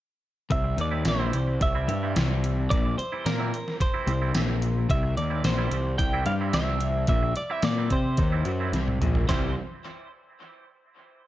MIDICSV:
0, 0, Header, 1, 8, 480
1, 0, Start_track
1, 0, Tempo, 549451
1, 439, Time_signature, 4, 2, 24, 8
1, 9848, End_track
2, 0, Start_track
2, 0, Title_t, "Clean electric guitar"
2, 0, Program_c, 0, 27
2, 452, Note_on_c, 0, 76, 89
2, 670, Note_off_c, 0, 76, 0
2, 709, Note_on_c, 0, 74, 83
2, 942, Note_off_c, 0, 74, 0
2, 948, Note_on_c, 0, 72, 81
2, 1382, Note_off_c, 0, 72, 0
2, 1419, Note_on_c, 0, 76, 81
2, 1857, Note_off_c, 0, 76, 0
2, 2362, Note_on_c, 0, 74, 97
2, 2601, Note_off_c, 0, 74, 0
2, 2604, Note_on_c, 0, 72, 80
2, 2846, Note_on_c, 0, 70, 81
2, 2849, Note_off_c, 0, 72, 0
2, 3288, Note_off_c, 0, 70, 0
2, 3334, Note_on_c, 0, 72, 79
2, 3771, Note_off_c, 0, 72, 0
2, 4287, Note_on_c, 0, 76, 85
2, 4503, Note_off_c, 0, 76, 0
2, 4518, Note_on_c, 0, 74, 84
2, 4757, Note_off_c, 0, 74, 0
2, 4761, Note_on_c, 0, 72, 76
2, 5202, Note_off_c, 0, 72, 0
2, 5227, Note_on_c, 0, 79, 95
2, 5468, Note_off_c, 0, 79, 0
2, 5472, Note_on_c, 0, 77, 85
2, 5536, Note_off_c, 0, 77, 0
2, 5716, Note_on_c, 0, 76, 84
2, 6185, Note_off_c, 0, 76, 0
2, 6195, Note_on_c, 0, 76, 84
2, 6415, Note_off_c, 0, 76, 0
2, 6436, Note_on_c, 0, 74, 77
2, 6560, Note_off_c, 0, 74, 0
2, 6560, Note_on_c, 0, 76, 73
2, 6676, Note_off_c, 0, 76, 0
2, 6679, Note_on_c, 0, 74, 81
2, 6920, Note_off_c, 0, 74, 0
2, 6923, Note_on_c, 0, 72, 71
2, 7842, Note_off_c, 0, 72, 0
2, 8116, Note_on_c, 0, 72, 72
2, 8337, Note_off_c, 0, 72, 0
2, 9848, End_track
3, 0, Start_track
3, 0, Title_t, "Clean electric guitar"
3, 0, Program_c, 1, 27
3, 796, Note_on_c, 1, 64, 74
3, 801, Note_on_c, 1, 60, 71
3, 803, Note_on_c, 1, 55, 70
3, 808, Note_on_c, 1, 52, 68
3, 915, Note_off_c, 1, 52, 0
3, 919, Note_off_c, 1, 55, 0
3, 919, Note_off_c, 1, 64, 0
3, 921, Note_off_c, 1, 60, 0
3, 1043, Note_on_c, 1, 64, 69
3, 1048, Note_on_c, 1, 60, 65
3, 1051, Note_on_c, 1, 55, 60
3, 1053, Note_on_c, 1, 52, 56
3, 1198, Note_off_c, 1, 64, 0
3, 1201, Note_off_c, 1, 60, 0
3, 1202, Note_off_c, 1, 55, 0
3, 1203, Note_off_c, 1, 52, 0
3, 1529, Note_on_c, 1, 64, 84
3, 1530, Note_on_c, 1, 60, 77
3, 1534, Note_on_c, 1, 55, 70
3, 1537, Note_on_c, 1, 52, 65
3, 1681, Note_off_c, 1, 64, 0
3, 1682, Note_off_c, 1, 60, 0
3, 1684, Note_off_c, 1, 55, 0
3, 1685, Note_off_c, 1, 52, 0
3, 1773, Note_on_c, 1, 64, 67
3, 1777, Note_on_c, 1, 60, 64
3, 1779, Note_on_c, 1, 55, 59
3, 1784, Note_on_c, 1, 52, 62
3, 1923, Note_off_c, 1, 64, 0
3, 1925, Note_off_c, 1, 60, 0
3, 1926, Note_off_c, 1, 55, 0
3, 1928, Note_off_c, 1, 52, 0
3, 2729, Note_on_c, 1, 64, 85
3, 2734, Note_on_c, 1, 60, 76
3, 2736, Note_on_c, 1, 55, 76
3, 2737, Note_on_c, 1, 52, 68
3, 2834, Note_off_c, 1, 52, 0
3, 2834, Note_off_c, 1, 55, 0
3, 2837, Note_off_c, 1, 60, 0
3, 2838, Note_off_c, 1, 64, 0
3, 2960, Note_on_c, 1, 64, 70
3, 2964, Note_on_c, 1, 60, 70
3, 2968, Note_on_c, 1, 55, 70
3, 2969, Note_on_c, 1, 52, 60
3, 3115, Note_off_c, 1, 64, 0
3, 3117, Note_off_c, 1, 60, 0
3, 3119, Note_off_c, 1, 55, 0
3, 3120, Note_off_c, 1, 52, 0
3, 3440, Note_on_c, 1, 64, 77
3, 3444, Note_on_c, 1, 60, 73
3, 3446, Note_on_c, 1, 55, 66
3, 3449, Note_on_c, 1, 52, 65
3, 3594, Note_off_c, 1, 64, 0
3, 3596, Note_off_c, 1, 60, 0
3, 3597, Note_off_c, 1, 55, 0
3, 3598, Note_off_c, 1, 52, 0
3, 3683, Note_on_c, 1, 64, 68
3, 3685, Note_on_c, 1, 60, 64
3, 3689, Note_on_c, 1, 55, 63
3, 3692, Note_on_c, 1, 52, 51
3, 3835, Note_off_c, 1, 64, 0
3, 3836, Note_off_c, 1, 60, 0
3, 3838, Note_off_c, 1, 55, 0
3, 3840, Note_off_c, 1, 52, 0
3, 4632, Note_on_c, 1, 64, 85
3, 4638, Note_on_c, 1, 60, 83
3, 4640, Note_on_c, 1, 55, 71
3, 4644, Note_on_c, 1, 52, 68
3, 4743, Note_off_c, 1, 52, 0
3, 4743, Note_off_c, 1, 55, 0
3, 4745, Note_off_c, 1, 60, 0
3, 4749, Note_off_c, 1, 64, 0
3, 4873, Note_on_c, 1, 64, 78
3, 4877, Note_on_c, 1, 60, 76
3, 4880, Note_on_c, 1, 55, 62
3, 4883, Note_on_c, 1, 52, 65
3, 5028, Note_off_c, 1, 64, 0
3, 5030, Note_off_c, 1, 60, 0
3, 5031, Note_off_c, 1, 55, 0
3, 5033, Note_off_c, 1, 52, 0
3, 5357, Note_on_c, 1, 64, 86
3, 5359, Note_on_c, 1, 60, 80
3, 5363, Note_on_c, 1, 55, 72
3, 5367, Note_on_c, 1, 52, 72
3, 5509, Note_off_c, 1, 64, 0
3, 5510, Note_off_c, 1, 60, 0
3, 5512, Note_off_c, 1, 55, 0
3, 5514, Note_off_c, 1, 52, 0
3, 5598, Note_on_c, 1, 64, 71
3, 5600, Note_on_c, 1, 60, 72
3, 5604, Note_on_c, 1, 55, 64
3, 5605, Note_on_c, 1, 52, 56
3, 5750, Note_off_c, 1, 64, 0
3, 5751, Note_off_c, 1, 60, 0
3, 5752, Note_off_c, 1, 55, 0
3, 5753, Note_off_c, 1, 52, 0
3, 6551, Note_on_c, 1, 64, 86
3, 6556, Note_on_c, 1, 60, 84
3, 6560, Note_on_c, 1, 55, 68
3, 6564, Note_on_c, 1, 52, 66
3, 6664, Note_off_c, 1, 52, 0
3, 6670, Note_off_c, 1, 64, 0
3, 6671, Note_off_c, 1, 55, 0
3, 6672, Note_off_c, 1, 60, 0
3, 6795, Note_on_c, 1, 64, 67
3, 6798, Note_on_c, 1, 60, 69
3, 6805, Note_on_c, 1, 52, 64
3, 6805, Note_on_c, 1, 55, 62
3, 6948, Note_off_c, 1, 64, 0
3, 6949, Note_off_c, 1, 60, 0
3, 6952, Note_off_c, 1, 52, 0
3, 6952, Note_off_c, 1, 55, 0
3, 7270, Note_on_c, 1, 64, 86
3, 7276, Note_on_c, 1, 60, 83
3, 7279, Note_on_c, 1, 55, 72
3, 7281, Note_on_c, 1, 52, 66
3, 7425, Note_off_c, 1, 64, 0
3, 7428, Note_off_c, 1, 60, 0
3, 7430, Note_off_c, 1, 55, 0
3, 7431, Note_off_c, 1, 52, 0
3, 7514, Note_on_c, 1, 64, 70
3, 7522, Note_on_c, 1, 60, 66
3, 7523, Note_on_c, 1, 55, 56
3, 7526, Note_on_c, 1, 52, 57
3, 7667, Note_off_c, 1, 64, 0
3, 7672, Note_off_c, 1, 55, 0
3, 7672, Note_off_c, 1, 60, 0
3, 7673, Note_off_c, 1, 52, 0
3, 8114, Note_on_c, 1, 48, 72
3, 8116, Note_on_c, 1, 52, 89
3, 8119, Note_on_c, 1, 55, 77
3, 8122, Note_on_c, 1, 60, 84
3, 8127, Note_on_c, 1, 64, 90
3, 8305, Note_off_c, 1, 48, 0
3, 8306, Note_off_c, 1, 52, 0
3, 8307, Note_off_c, 1, 55, 0
3, 8308, Note_off_c, 1, 60, 0
3, 8311, Note_off_c, 1, 64, 0
3, 9848, End_track
4, 0, Start_track
4, 0, Title_t, "Clean electric guitar"
4, 0, Program_c, 2, 27
4, 438, Note_on_c, 2, 48, 89
4, 670, Note_off_c, 2, 48, 0
4, 674, Note_on_c, 2, 51, 82
4, 910, Note_off_c, 2, 51, 0
4, 922, Note_on_c, 2, 46, 91
4, 1155, Note_off_c, 2, 46, 0
4, 1161, Note_on_c, 2, 48, 61
4, 1353, Note_off_c, 2, 48, 0
4, 1407, Note_on_c, 2, 48, 64
4, 1596, Note_off_c, 2, 48, 0
4, 1643, Note_on_c, 2, 55, 84
4, 1875, Note_off_c, 2, 55, 0
4, 1888, Note_on_c, 2, 48, 85
4, 2357, Note_off_c, 2, 48, 0
4, 2368, Note_on_c, 2, 46, 97
4, 2597, Note_off_c, 2, 46, 0
4, 2849, Note_on_c, 2, 58, 88
4, 3076, Note_off_c, 2, 58, 0
4, 3561, Note_on_c, 2, 48, 87
4, 3791, Note_off_c, 2, 48, 0
4, 3805, Note_on_c, 2, 46, 92
4, 4270, Note_off_c, 2, 46, 0
4, 4274, Note_on_c, 2, 48, 96
4, 4506, Note_off_c, 2, 48, 0
4, 4519, Note_on_c, 2, 51, 92
4, 4748, Note_off_c, 2, 51, 0
4, 4751, Note_on_c, 2, 46, 96
4, 4984, Note_off_c, 2, 46, 0
4, 4991, Note_on_c, 2, 48, 67
4, 5183, Note_off_c, 2, 48, 0
4, 5237, Note_on_c, 2, 48, 66
4, 5425, Note_off_c, 2, 48, 0
4, 5471, Note_on_c, 2, 55, 81
4, 5703, Note_off_c, 2, 55, 0
4, 5717, Note_on_c, 2, 48, 92
4, 6185, Note_off_c, 2, 48, 0
4, 6189, Note_on_c, 2, 46, 87
4, 6421, Note_off_c, 2, 46, 0
4, 6667, Note_on_c, 2, 58, 92
4, 6900, Note_off_c, 2, 58, 0
4, 6910, Note_on_c, 2, 60, 90
4, 7142, Note_off_c, 2, 60, 0
4, 7150, Note_on_c, 2, 51, 97
4, 7382, Note_off_c, 2, 51, 0
4, 7387, Note_on_c, 2, 54, 89
4, 7621, Note_off_c, 2, 54, 0
4, 7628, Note_on_c, 2, 48, 87
4, 7862, Note_off_c, 2, 48, 0
4, 7874, Note_on_c, 2, 46, 87
4, 8105, Note_off_c, 2, 46, 0
4, 8110, Note_on_c, 2, 48, 72
4, 8112, Note_on_c, 2, 55, 82
4, 8119, Note_on_c, 2, 60, 93
4, 8122, Note_on_c, 2, 64, 98
4, 8302, Note_off_c, 2, 48, 0
4, 8304, Note_off_c, 2, 55, 0
4, 8307, Note_off_c, 2, 60, 0
4, 8309, Note_off_c, 2, 64, 0
4, 9848, End_track
5, 0, Start_track
5, 0, Title_t, "Picked electric bass"
5, 0, Program_c, 3, 34
5, 443, Note_on_c, 3, 36, 74
5, 666, Note_off_c, 3, 36, 0
5, 683, Note_on_c, 3, 39, 86
5, 905, Note_off_c, 3, 39, 0
5, 928, Note_on_c, 3, 34, 82
5, 1148, Note_off_c, 3, 34, 0
5, 1174, Note_on_c, 3, 36, 62
5, 1391, Note_off_c, 3, 36, 0
5, 1410, Note_on_c, 3, 36, 65
5, 1629, Note_off_c, 3, 36, 0
5, 1650, Note_on_c, 3, 43, 85
5, 1869, Note_off_c, 3, 43, 0
5, 1888, Note_on_c, 3, 36, 81
5, 2331, Note_off_c, 3, 36, 0
5, 2373, Note_on_c, 3, 34, 80
5, 2590, Note_off_c, 3, 34, 0
5, 2848, Note_on_c, 3, 46, 81
5, 3066, Note_off_c, 3, 46, 0
5, 3555, Note_on_c, 3, 36, 88
5, 3778, Note_off_c, 3, 36, 0
5, 3795, Note_on_c, 3, 34, 75
5, 4240, Note_off_c, 3, 34, 0
5, 4281, Note_on_c, 3, 36, 85
5, 4500, Note_off_c, 3, 36, 0
5, 4511, Note_on_c, 3, 39, 84
5, 4735, Note_off_c, 3, 39, 0
5, 4752, Note_on_c, 3, 34, 90
5, 4975, Note_off_c, 3, 34, 0
5, 4989, Note_on_c, 3, 36, 76
5, 5213, Note_off_c, 3, 36, 0
5, 5233, Note_on_c, 3, 36, 70
5, 5454, Note_off_c, 3, 36, 0
5, 5468, Note_on_c, 3, 43, 87
5, 5691, Note_off_c, 3, 43, 0
5, 5707, Note_on_c, 3, 36, 81
5, 6154, Note_off_c, 3, 36, 0
5, 6188, Note_on_c, 3, 34, 84
5, 6411, Note_off_c, 3, 34, 0
5, 6668, Note_on_c, 3, 46, 87
5, 6891, Note_off_c, 3, 46, 0
5, 6910, Note_on_c, 3, 48, 82
5, 7132, Note_off_c, 3, 48, 0
5, 7145, Note_on_c, 3, 39, 85
5, 7370, Note_off_c, 3, 39, 0
5, 7386, Note_on_c, 3, 42, 87
5, 7610, Note_off_c, 3, 42, 0
5, 7626, Note_on_c, 3, 36, 75
5, 7851, Note_off_c, 3, 36, 0
5, 7868, Note_on_c, 3, 34, 73
5, 8092, Note_off_c, 3, 34, 0
5, 8115, Note_on_c, 3, 36, 85
5, 8336, Note_off_c, 3, 36, 0
5, 9848, End_track
6, 0, Start_track
6, 0, Title_t, "Muted clean electric guitar strokes"
6, 562, Note_on_c, 9, 29, 43
6, 649, Note_off_c, 9, 29, 0
6, 925, Note_on_c, 9, 29, 36
6, 1013, Note_off_c, 9, 29, 0
6, 1403, Note_on_c, 9, 29, 41
6, 1490, Note_off_c, 9, 29, 0
6, 2016, Note_on_c, 9, 29, 40
6, 2103, Note_off_c, 9, 29, 0
6, 2491, Note_on_c, 9, 29, 42
6, 2578, Note_off_c, 9, 29, 0
6, 2844, Note_on_c, 9, 29, 39
6, 2932, Note_off_c, 9, 29, 0
6, 3324, Note_on_c, 9, 29, 45
6, 3411, Note_off_c, 9, 29, 0
6, 3921, Note_on_c, 9, 29, 47
6, 4008, Note_off_c, 9, 29, 0
6, 4393, Note_on_c, 9, 29, 46
6, 4481, Note_off_c, 9, 29, 0
6, 4753, Note_on_c, 9, 29, 45
6, 4840, Note_off_c, 9, 29, 0
6, 5235, Note_on_c, 9, 29, 41
6, 5322, Note_off_c, 9, 29, 0
6, 5839, Note_on_c, 9, 29, 50
6, 5927, Note_off_c, 9, 29, 0
6, 6313, Note_on_c, 9, 29, 46
6, 6400, Note_off_c, 9, 29, 0
6, 6432, Note_on_c, 9, 29, 51
6, 6519, Note_off_c, 9, 29, 0
6, 6674, Note_on_c, 9, 29, 38
6, 6762, Note_off_c, 9, 29, 0
6, 7148, Note_on_c, 9, 29, 39
6, 7236, Note_off_c, 9, 29, 0
6, 7753, Note_on_c, 9, 29, 43
6, 7841, Note_off_c, 9, 29, 0
6, 9848, End_track
7, 0, Start_track
7, 0, Title_t, "Muted picked electric bass strokes"
7, 2607, Note_on_c, 9, 29, 37
7, 2695, Note_off_c, 9, 29, 0
7, 6428, Note_on_c, 9, 29, 37
7, 6515, Note_off_c, 9, 29, 0
7, 9848, End_track
8, 0, Start_track
8, 0, Title_t, "Drums"
8, 442, Note_on_c, 9, 36, 85
8, 442, Note_on_c, 9, 42, 68
8, 529, Note_off_c, 9, 36, 0
8, 529, Note_off_c, 9, 42, 0
8, 683, Note_on_c, 9, 42, 56
8, 770, Note_off_c, 9, 42, 0
8, 917, Note_on_c, 9, 42, 71
8, 917, Note_on_c, 9, 54, 84
8, 920, Note_on_c, 9, 38, 88
8, 1004, Note_off_c, 9, 42, 0
8, 1004, Note_off_c, 9, 54, 0
8, 1008, Note_off_c, 9, 38, 0
8, 1165, Note_on_c, 9, 42, 55
8, 1252, Note_off_c, 9, 42, 0
8, 1407, Note_on_c, 9, 42, 75
8, 1408, Note_on_c, 9, 36, 68
8, 1494, Note_off_c, 9, 42, 0
8, 1495, Note_off_c, 9, 36, 0
8, 1648, Note_on_c, 9, 42, 54
8, 1736, Note_off_c, 9, 42, 0
8, 1888, Note_on_c, 9, 42, 69
8, 1888, Note_on_c, 9, 54, 77
8, 1891, Note_on_c, 9, 38, 92
8, 1975, Note_off_c, 9, 42, 0
8, 1975, Note_off_c, 9, 54, 0
8, 1979, Note_off_c, 9, 38, 0
8, 2130, Note_on_c, 9, 42, 56
8, 2218, Note_off_c, 9, 42, 0
8, 2369, Note_on_c, 9, 36, 85
8, 2370, Note_on_c, 9, 42, 70
8, 2457, Note_off_c, 9, 36, 0
8, 2458, Note_off_c, 9, 42, 0
8, 2613, Note_on_c, 9, 42, 56
8, 2700, Note_off_c, 9, 42, 0
8, 2849, Note_on_c, 9, 42, 67
8, 2849, Note_on_c, 9, 54, 86
8, 2852, Note_on_c, 9, 38, 88
8, 2936, Note_off_c, 9, 42, 0
8, 2936, Note_off_c, 9, 54, 0
8, 2940, Note_off_c, 9, 38, 0
8, 3091, Note_on_c, 9, 42, 54
8, 3179, Note_off_c, 9, 42, 0
8, 3213, Note_on_c, 9, 38, 31
8, 3300, Note_off_c, 9, 38, 0
8, 3324, Note_on_c, 9, 36, 79
8, 3327, Note_on_c, 9, 42, 72
8, 3411, Note_off_c, 9, 36, 0
8, 3414, Note_off_c, 9, 42, 0
8, 3560, Note_on_c, 9, 42, 57
8, 3647, Note_off_c, 9, 42, 0
8, 3796, Note_on_c, 9, 42, 65
8, 3796, Note_on_c, 9, 54, 85
8, 3800, Note_on_c, 9, 38, 86
8, 3883, Note_off_c, 9, 42, 0
8, 3883, Note_off_c, 9, 54, 0
8, 3887, Note_off_c, 9, 38, 0
8, 4038, Note_on_c, 9, 42, 51
8, 4125, Note_off_c, 9, 42, 0
8, 4277, Note_on_c, 9, 36, 92
8, 4282, Note_on_c, 9, 42, 67
8, 4365, Note_off_c, 9, 36, 0
8, 4369, Note_off_c, 9, 42, 0
8, 4521, Note_on_c, 9, 42, 54
8, 4608, Note_off_c, 9, 42, 0
8, 4754, Note_on_c, 9, 42, 64
8, 4754, Note_on_c, 9, 54, 90
8, 4758, Note_on_c, 9, 38, 91
8, 4842, Note_off_c, 9, 42, 0
8, 4842, Note_off_c, 9, 54, 0
8, 4845, Note_off_c, 9, 38, 0
8, 4992, Note_on_c, 9, 42, 58
8, 5080, Note_off_c, 9, 42, 0
8, 5231, Note_on_c, 9, 36, 76
8, 5234, Note_on_c, 9, 42, 74
8, 5319, Note_off_c, 9, 36, 0
8, 5321, Note_off_c, 9, 42, 0
8, 5466, Note_on_c, 9, 42, 56
8, 5554, Note_off_c, 9, 42, 0
8, 5708, Note_on_c, 9, 42, 69
8, 5708, Note_on_c, 9, 54, 84
8, 5711, Note_on_c, 9, 38, 86
8, 5795, Note_off_c, 9, 42, 0
8, 5795, Note_off_c, 9, 54, 0
8, 5799, Note_off_c, 9, 38, 0
8, 5945, Note_on_c, 9, 42, 56
8, 6032, Note_off_c, 9, 42, 0
8, 6179, Note_on_c, 9, 42, 69
8, 6186, Note_on_c, 9, 36, 90
8, 6266, Note_off_c, 9, 42, 0
8, 6273, Note_off_c, 9, 36, 0
8, 6426, Note_on_c, 9, 42, 56
8, 6514, Note_off_c, 9, 42, 0
8, 6661, Note_on_c, 9, 42, 69
8, 6661, Note_on_c, 9, 54, 90
8, 6664, Note_on_c, 9, 38, 92
8, 6748, Note_off_c, 9, 42, 0
8, 6748, Note_off_c, 9, 54, 0
8, 6752, Note_off_c, 9, 38, 0
8, 6904, Note_on_c, 9, 42, 58
8, 6907, Note_on_c, 9, 36, 69
8, 6992, Note_off_c, 9, 42, 0
8, 6994, Note_off_c, 9, 36, 0
8, 7140, Note_on_c, 9, 42, 70
8, 7146, Note_on_c, 9, 36, 73
8, 7228, Note_off_c, 9, 42, 0
8, 7234, Note_off_c, 9, 36, 0
8, 7383, Note_on_c, 9, 42, 55
8, 7471, Note_off_c, 9, 42, 0
8, 7630, Note_on_c, 9, 42, 61
8, 7634, Note_on_c, 9, 38, 46
8, 7718, Note_off_c, 9, 42, 0
8, 7721, Note_off_c, 9, 38, 0
8, 7756, Note_on_c, 9, 48, 52
8, 7844, Note_off_c, 9, 48, 0
8, 7877, Note_on_c, 9, 42, 49
8, 7877, Note_on_c, 9, 45, 69
8, 7964, Note_off_c, 9, 42, 0
8, 7964, Note_off_c, 9, 45, 0
8, 7994, Note_on_c, 9, 43, 74
8, 8081, Note_off_c, 9, 43, 0
8, 8115, Note_on_c, 9, 36, 84
8, 8118, Note_on_c, 9, 39, 76
8, 8122, Note_on_c, 9, 38, 78
8, 8203, Note_off_c, 9, 36, 0
8, 8206, Note_off_c, 9, 39, 0
8, 8209, Note_off_c, 9, 38, 0
8, 9848, End_track
0, 0, End_of_file